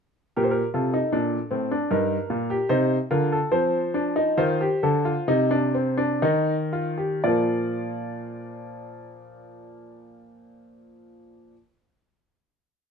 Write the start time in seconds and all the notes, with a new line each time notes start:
0.36 A#2 G4 A#4
0.44 C5
0.51 A#4
0.74 C3 F4 A4
0.94 D#4
1.12 A#2 D4
1.51 A2 C4
1.71 D4
1.91 G2 D#4 A#4
2.30 A#2 F4
2.50 G4
2.69 C3 D#4 C5
3.11 D3 F4 A#4
3.32 A4
3.52 F3 C4 C5
3.94 D4
4.16 D#4
4.37 D#3 F4 C5
4.61 G4
4.83 D3 A4
5.05 F4
5.28 C3 D#4
5.51 D4
5.74 C4
5.97 D4
6.22 D#3 D#4
6.73 F4
6.98 G4
7.24 A#2 F3 A#3 F4 D5